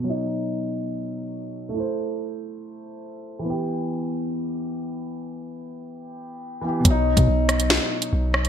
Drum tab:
HH |----------------|----------------|----------------|----------------|
SD |----------------|----------------|----------------|----------------|
BD |----------------|----------------|----------------|----------------|

HH |x--x--xx---x---x|
SD |------r-o-----r-|
BD |o--o------------|